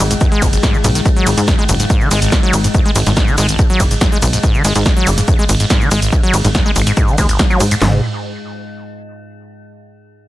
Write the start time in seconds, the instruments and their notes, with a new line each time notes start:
Already playing: synth drone G#2 G#3
0.00 analog synth bass G#1
0.11 acid bass G#2, closed hi-hat, shaker
0.21 acid bass F#2, kick, closed hi-hat, shaker
0.32 acid bass G#3, shaker
0.42 analog synth bass F#1, acid bass G#2, kick, open hi-hat, ride, shaker
0.53 acid bass G#1, closed hi-hat, shaker
0.63 acid bass G#2, kick, snare, closed hi-hat, shaker
0.74 acid bass G#3, shaker
0.84 analog synth bass B1, acid bass G#2, open hi-hat, ride, shaker
0.95 acid bass D#3, closed hi-hat, shaker
1.05 acid bass G#2, kick, closed hi-hat, shaker
1.16 acid bass F#3, shaker
1.27 analog synth bass G#1, acid bass G#3, open hi-hat, ride, shaker
1.37 acid bass G#2, analog synth bass G#2, closed hi-hat, shaker
1.48 acid bass F#2, kick, snare, closed hi-hat, shaker
1.59 acid bass G#3, shaker
1.69 analog synth bass F#1, acid bass G#1, open hi-hat, ride, shaker
1.80 acid bass G#2, closed hi-hat, shaker
1.90 acid bass G#2, kick, closed hi-hat, shaker
2.01 acid bass D#3, shaker
2.11 analog synth bass G#1, acid bass G#3, open hi-hat, ride, shaker
2.22 acid bass G#1, closed hi-hat, shaker
2.32 kick, snare, closed hi-hat, shaker
2.43 acid bass F#3, shaker
2.53 analog synth bass G#1, acid bass G#3, open hi-hat, ride, shaker
2.64 acid bass G#2, closed hi-hat, shaker
2.75 acid bass F#2, kick, closed hi-hat, shaker
2.85 acid bass G#3, shaker
2.96 analog synth bass G#1, acid bass G#1, open hi-hat, ride, shaker
3.07 analog synth bass G#1, acid bass G#2, snare, closed hi-hat, shaker
3.17 acid bass G#2, kick, snare, closed hi-hat, shaker
3.28 acid bass D#3, shaker
3.38 analog synth bass G#1, acid bass G#3, open hi-hat, ride, shaker
3.49 acid bass G#1, closed hi-hat, shaker
3.59 acid bass G#2, kick, closed hi-hat, shaker
3.70 acid bass F#3, shaker
3.80 analog synth bass F#1, acid bass G#3, kick, open hi-hat, ride, shaker
3.91 acid bass G#2, closed hi-hat, shaker
4.01 acid bass F#2, kick, snare, closed hi-hat, shaker
4.12 acid bass G#3, shaker
4.22 acid bass G#1, analog synth bass B1, open hi-hat, ride, shaker
4.33 acid bass G#2, closed hi-hat, shaker
4.43 acid bass G#2, kick, closed hi-hat, shaker
4.54 acid bass D#3, shaker
4.65 analog synth bass G#1, acid bass G#3, open hi-hat, ride, shaker
4.76 acid bass G#1, analog synth bass G#2, closed hi-hat, shaker
4.86 kick, snare, closed hi-hat, shaker
4.97 acid bass F#3, shaker
5.07 analog synth bass F#1, acid bass G#3, open hi-hat, ride, shaker
5.18 acid bass G#2, closed hi-hat, shaker
5.28 acid bass F#2, kick, closed hi-hat, shaker
5.39 acid bass G#3, shaker
5.49 analog synth bass G#1, acid bass G#1, open hi-hat, ride, shaker
5.60 acid bass G#2, closed hi-hat, shaker
5.70 acid bass G#2, kick, snare, closed hi-hat, shaker
5.81 acid bass D#3, shaker
5.91 analog synth bass G#1, acid bass G#3, open hi-hat, ride, shaker
6.02 acid bass G#1, closed hi-hat, shaker
6.13 acid bass G#2, kick, closed hi-hat, shaker
6.23 acid bass F#3, shaker
6.34 analog synth bass G#1, acid bass G#3, open hi-hat, ride, shaker
6.45 analog synth bass G#1, acid bass G#2, snare, closed hi-hat, shaker
6.55 acid bass F#2, kick, snare, closed hi-hat, shaker
6.66 acid bass G#3, shaker
6.76 analog synth bass G#1, acid bass G#1, open hi-hat, ride, shaker
6.87 acid bass G#2, closed hi-hat, shaker
6.97 acid bass G#2, kick, closed hi-hat, shaker
7.08 acid bass D#3, shaker
7.18 analog synth bass D#2, acid bass G#3, kick, open hi-hat, ride, shaker
7.29 acid bass G#1, closed hi-hat, shaker
7.39 acid bass G#2, kick, snare, closed hi-hat, shaker
7.50 acid bass F#3, shaker
7.60 analog synth bass G#2, acid bass G#3, open hi-hat, ride, shaker
7.71 acid bass G#2, closed hi-hat, shaker
7.82 analog synth bass G#1, acid bass G#2, snare, clap, floor tom